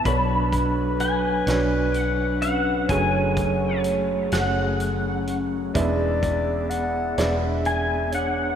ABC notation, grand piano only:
X:1
M:6/8
L:1/8
Q:3/8=42
K:F#m
V:1 name="Grand piano"
[F,DBc]2 z [F,DBc]2 z | [A,FGc]2 z [A,FGc]2 z | [G,DBe]2 z [G,DBd]2 z |]
V:2 name="Grand piano" clef=bass
[B,,,B,,]6 | [F,,,F,,]6 | [E,,E,]6 |]